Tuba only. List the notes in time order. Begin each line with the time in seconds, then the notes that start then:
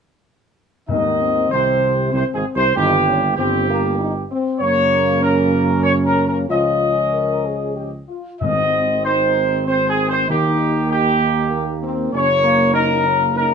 0.89 D#2
1.51 C2
2.14 C2
2.34 G#1
2.55 C2
2.77 G1
3.38 G1
4.61 F#2
6.49 C#2
8.41 G#1
10.29 D#2
12.13 F#1